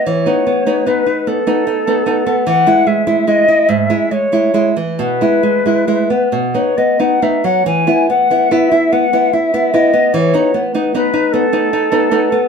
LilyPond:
<<
  \new Staff \with { instrumentName = "Flute" } { \time 6/8 \key e \major \tempo 4. = 49 cis''4 b'8 a'4. | fis''8 e''8 dis''8 e''8 cis''8. r16 | b'4. r16 cis''16 dis''16 fis''16 e''16 fis''16 | gis''8 fis''8 e''8 fis''8 e''8 dis''8 |
cis''4 b'8 a'4. | }
  \new Staff \with { instrumentName = "Nylon-string guitar" } { \time 6/8 \key e \major e16 <b dis'>16 b16 <b dis'>16 <b dis'>16 dis'16 b16 <b dis'>16 dis'16 <b dis'>16 <b dis'>16 b16 | e16 <gis e'>16 gis16 <gis e'>16 <gis e'>16 e'16 gis,16 <gis e'>16 gis16 <gis e'>16 <gis e'>16 e16 | b,16 <gis e'>16 gis16 <gis e'>16 <gis e'>16 b16 b,16 <b dis'>16 b16 <b dis'>16 <b dis'>16 fis16 | e16 <b e'>16 b16 <b e'>16 <b e'>16 e'16 b16 <b e'>16 e'16 <b e'>16 <b e'>16 b16 |
e16 <b dis'>16 b16 <b dis'>16 <b dis'>16 dis'16 b16 <b dis'>16 dis'16 <b dis'>16 <b dis'>16 b16 | }
>>